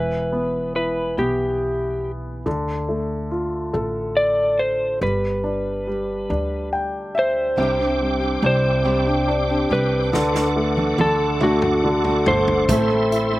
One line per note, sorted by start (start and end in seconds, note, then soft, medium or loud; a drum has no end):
0.00 1.14 E1 medium
0.00 2.42 E3 medium
0.00 0.75 B4 medium
0.32 1.16 B3 soft
0.75 2.42 E4 soft
0.75 1.15 B4 medium
1.18 2.42 B1 medium
1.18 2.42 B3 soft
1.18 2.10 G4 medium
2.46 3.70 D2 medium
2.46 4.98 D3 medium
2.89 4.55 A3 soft
3.31 4.98 F4 soft
3.74 4.98 A1 medium
3.74 4.98 A4 soft
4.17 4.60 D5 medium
4.59 5.02 C5 medium
5.01 6.25 G1 medium
5.01 5.86 G3 medium
5.01 6.69 B4 medium
5.44 6.28 D4 soft
5.87 7.54 G3 soft
6.30 7.54 D2 medium
6.30 7.54 D4 soft
6.73 7.12 G5 medium
7.15 7.54 E5 medium
7.19 8.41 C5 medium
7.56 8.39 C2 medium
7.56 7.78 C3 medium
7.56 10.09 C3 medium
7.56 7.78 G3 medium
7.56 7.79 C4 medium
7.56 10.11 C4 soft
7.56 7.78 D4 medium
7.56 7.76 G4 medium
7.56 10.11 G5 soft
7.56 12.65 D6 medium
7.77 8.22 C4 soft
7.77 8.20 D4 soft
7.77 8.19 G4 soft
8.01 9.67 G3 soft
8.20 8.42 C4 soft
8.20 8.43 D4 soft
8.20 8.42 G4 soft
8.42 9.66 C2 medium
8.42 8.84 G3 soft
8.42 8.84 C4 soft
8.42 9.26 D4 soft
8.42 8.84 D4 medium
8.42 8.85 G4 medium
8.46 9.72 C5 medium
8.84 9.06 C3 medium
8.84 9.06 G3 medium
8.84 9.06 C4 medium
8.84 9.06 D4 medium
8.84 9.69 G4 medium
8.84 9.04 G4 medium
9.06 9.50 C4 soft
9.06 9.48 D4 soft
9.06 9.47 G4 soft
9.28 10.11 D4 soft
9.48 9.69 C4 soft
9.48 9.71 D4 soft
9.48 9.70 G4 soft
9.69 10.11 C2 medium
9.69 10.12 G3 soft
9.69 10.13 C4 soft
9.69 10.12 D4 medium
9.69 10.12 G4 soft
9.69 10.14 G4 medium
9.69 11.00 B4 medium
10.12 10.94 D2 medium
10.12 10.34 D3 medium
10.12 10.97 D3 medium
10.12 10.34 A3 medium
10.12 10.33 D4 medium
10.12 10.32 F#4 medium
10.12 13.39 A4 medium
10.12 12.66 F#5 medium
10.12 snare soft
10.33 10.77 A3 soft
10.33 10.76 D4 soft
10.33 10.74 F#4 soft
10.33 snare soft
10.56 11.40 A3 soft
10.75 10.97 A3 soft
10.75 10.98 D4 soft
10.75 10.97 F#4 soft
10.75 high tom soft
10.97 12.22 D2 medium
10.97 11.39 D3 soft
10.97 11.82 D3 soft
10.97 11.40 A3 medium
10.97 11.40 D4 soft
10.97 11.41 F#4 medium
10.97 11.39 A4 medium
10.97 high tom medium
11.40 11.62 D3 medium
11.40 11.62 A3 medium
11.40 12.25 A3 medium
11.40 11.62 D4 medium
11.40 11.60 F#4 medium
11.40 12.30 F#4 medium
11.40 mid tom medium
11.61 12.06 A3 soft
11.61 12.04 D4 soft
11.61 12.03 F#4 soft
11.61 mid tom medium
11.84 12.66 D3 medium
12.04 12.25 A3 soft
12.04 12.26 D4 soft
12.04 12.26 F#4 medium
12.04 floor tom medium
12.25 12.66 G1 medium
12.25 12.68 D3 medium
12.25 12.68 A3 soft
12.25 12.69 D4 medium
12.25 12.70 F#4 medium
12.25 13.39 C5 medium
12.25 floor tom medium
12.48 floor tom medium
12.68 13.39 A1 medium
12.68 12.89 A2 medium
12.68 12.90 E3 medium
12.68 12.90 A3 medium
12.68 13.39 A3 medium
12.68 12.89 C4 medium
12.68 12.88 E4 medium
12.68 13.39 E5 soft
12.68 13.39 C6 medium
12.68 kick medium
12.68 closed hi-hat medium
12.89 13.33 A3 soft
12.89 13.32 C4 soft
12.89 13.30 E4 soft
13.12 13.39 E4 soft
13.12 closed hi-hat soft
13.31 13.39 A3 soft
13.31 13.39 C4 soft
13.31 13.39 E4 soft